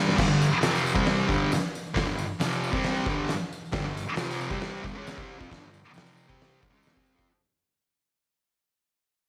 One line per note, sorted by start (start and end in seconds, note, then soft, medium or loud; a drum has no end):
0.00 0.15 G2 medium
0.00 0.15 D3 medium
0.00 0.17 G3 medium
0.09 snare medium
0.16 0.26 G2 loud
0.16 0.26 D3 loud
0.16 kick loud
0.16 snare loud
0.16 crash loud
0.20 tambourine soft
0.27 0.47 G2 medium
0.27 0.47 D3 medium
0.41 tambourine medium
0.61 0.95 F2 loud
0.61 0.93 C3 loud
0.61 0.94 F3 loud
0.61 snare loud
0.61 open hi-hat medium
0.61 tambourine loud
0.75 tambourine medium
0.86 tambourine medium
0.94 1.28 C3 medium
0.94 1.27 G3 medium
0.94 1.28 C4 loud
0.94 kick loud
0.98 tambourine soft
1.06 snare loud
1.06 open hi-hat medium
1.21 tambourine soft
1.28 1.51 G2 medium
1.28 1.51 D3 loud
1.28 1.51 G3 loud
1.28 kick loud
1.28 tambourine soft
1.52 snare loud
1.52 open hi-hat medium
1.52 tambourine loud
1.75 tambourine medium
1.87 tambourine soft
1.94 2.06 G2 medium
1.94 2.06 D3 loud
1.94 kick loud
1.94 snare loud
1.94 open hi-hat medium
1.94 tambourine soft
2.07 2.25 G2 medium
2.07 2.25 D3 medium
2.19 tambourine medium
2.40 2.73 F2 medium
2.40 2.71 C3 loud
2.40 2.74 F3 loud
2.40 snare loud
2.40 open hi-hat medium
2.40 tambourine loud
2.52 tambourine medium
2.64 tambourine medium
2.72 3.06 C3 medium
2.72 3.07 G3 loud
2.72 3.07 C4 loud
2.72 kick loud
2.72 tambourine soft
2.83 snare loud
2.83 open hi-hat medium
2.97 tambourine soft
3.06 3.29 G2 medium
3.06 3.30 D3 loud
3.06 3.30 G3 loud
3.06 kick loud
3.06 tambourine soft
3.28 snare loud
3.28 open hi-hat medium
3.28 tambourine medium
3.53 tambourine medium
3.65 tambourine soft
3.72 3.84 G2 loud
3.72 3.84 D3 loud
3.72 kick loud
3.72 snare loud
3.72 open hi-hat medium
3.76 tambourine soft
3.85 4.03 G2 medium
3.85 4.03 D3 medium
3.97 tambourine medium
4.16 4.50 F2 loud
4.16 4.49 C3 loud
4.16 4.50 F3 loud
4.16 snare loud
4.16 open hi-hat medium
4.16 tambourine loud
4.31 tambourine medium
4.41 tambourine medium
4.50 4.82 C3 medium
4.50 4.84 G3 loud
4.50 4.85 C4 loud
4.50 kick loud
4.61 snare loud
4.61 open hi-hat medium
4.77 tambourine soft
4.82 4.94 G2 loud
4.82 4.94 D3 loud
4.82 kick loud
4.87 tambourine soft
4.95 5.17 C#3 medium
4.95 5.17 G#3 loud
4.95 5.18 C#4 loud
5.06 snare loud
5.06 open hi-hat medium
5.06 tambourine loud
5.17 5.39 C3 medium
5.17 5.39 G3 medium
5.17 5.38 C4 loud
5.17 kick loud
5.39 5.50 F3 loud
5.39 5.50 C4 loud
5.39 kick loud
5.39 tambourine soft
5.49 5.58 G2 loud
5.49 5.59 D3 loud
5.49 kick loud
5.49 snare loud
5.49 open hi-hat medium
5.49 tambourine soft
5.60 5.79 G2 medium
5.60 5.79 D3 medium
5.60 tambourine soft
5.74 tambourine medium
5.84 tambourine soft
5.93 6.27 F2 loud
5.93 6.26 C3 loud
5.93 6.27 F3 loud
5.93 open hi-hat medium
5.93 tambourine loud
5.98 snare loud
6.06 tambourine medium
6.17 tambourine medium
6.28 6.61 C3 medium
6.28 6.61 G3 medium
6.28 6.61 C4 loud
6.28 kick loud
6.41 snare loud
6.41 open hi-hat medium
6.50 tambourine soft
6.61 6.72 G2 medium
6.61 6.71 D3 loud
6.61 kick loud
6.61 tambourine soft
6.71 6.93 C#3 medium
6.71 6.93 G#3 medium
6.71 6.94 C#4 loud
6.71 tambourine soft
6.83 open hi-hat medium
6.83 tambourine loud
6.87 snare loud
6.93 7.15 C3 medium
6.93 7.15 G3 medium
6.93 7.14 C4 loud
6.93 kick loud
7.06 tambourine medium
7.15 7.27 F3 medium
7.15 7.27 C4 medium
7.15 kick loud
7.15 tambourine soft